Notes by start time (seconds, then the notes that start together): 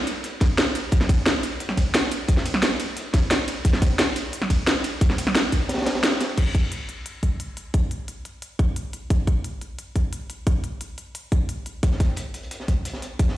0.07 closed hi-hat, ride
0.15 closed hi-hat
0.24 closed hi-hat
0.41 kick, snare, closed hi-hat, ride
0.58 snare, closed hi-hat
0.66 closed hi-hat
0.75 closed hi-hat, ride
0.84 closed hi-hat
0.92 kick, closed hi-hat
1.01 snare
1.09 kick, snare, closed hi-hat, ride
1.26 snare, closed hi-hat
1.43 closed hi-hat, ride
1.51 closed hi-hat
1.60 closed hi-hat
1.69 snare
1.77 kick, closed hi-hat, ride
1.94 snare, closed hi-hat
2.03 snare
2.11 closed hi-hat, ride
2.28 kick, closed hi-hat
2.37 snare
2.46 closed hi-hat, ride
2.54 snare
2.63 snare, closed hi-hat
2.80 closed hi-hat, ride
2.88 closed hi-hat
2.97 closed hi-hat
3.14 kick, snare, closed hi-hat, ride
3.30 snare, closed hi-hat
3.39 closed hi-hat
3.47 closed hi-hat, ride
3.57 closed hi-hat
3.65 kick, closed hi-hat
3.73 snare
3.82 kick, snare, closed hi-hat, ride
3.98 snare, closed hi-hat
4.16 closed hi-hat, ride
4.33 closed hi-hat
4.42 snare
4.50 kick, closed hi-hat, ride
4.67 snare, closed hi-hat
4.75 snare
4.84 closed hi-hat, ride
5.01 kick, closed hi-hat
5.10 snare
5.18 closed hi-hat, ride
5.27 snare
5.35 snare, closed hi-hat
5.52 kick, closed hi-hat, ride
5.61 closed hi-hat
5.69 snare, closed hi-hat
5.74 snare, closed hi-hat
5.78 snare, closed hi-hat
5.82 snare, closed hi-hat
5.86 snare, closed hi-hat, ride
5.95 snare, closed hi-hat
6.03 snare, closed hi-hat
6.12 snare, closed hi-hat
6.21 snare, closed hi-hat, ride
6.29 closed hi-hat
6.38 kick, closed hi-hat, crash
6.55 kick, closed hi-hat
6.72 closed hi-hat
6.89 closed hi-hat
7.06 closed hi-hat
7.23 kick, closed hi-hat
7.40 closed hi-hat
7.57 closed hi-hat
7.74 kick, closed hi-hat
7.91 closed hi-hat
8.08 closed hi-hat
8.25 closed hi-hat
8.42 closed hi-hat
8.59 kick, closed hi-hat
8.76 closed hi-hat
8.93 closed hi-hat
9.10 kick, closed hi-hat
9.27 kick, closed hi-hat
9.44 closed hi-hat
9.61 closed hi-hat
9.79 closed hi-hat
9.96 kick, closed hi-hat
10.13 closed hi-hat
10.30 closed hi-hat
10.47 kick, closed hi-hat
10.64 closed hi-hat
10.81 closed hi-hat
10.98 closed hi-hat
11.15 closed hi-hat
11.32 kick, closed hi-hat
11.49 closed hi-hat
11.66 closed hi-hat
11.83 kick, closed hi-hat
11.91 snare
12.00 kick, snare, closed hi-hat
12.16 closed hi-hat
12.34 closed hi-hat
12.43 closed hi-hat
12.51 closed hi-hat
12.60 snare
12.68 kick, closed hi-hat
12.85 closed hi-hat
12.93 snare
13.02 closed hi-hat
13.19 kick, closed hi-hat
13.28 snare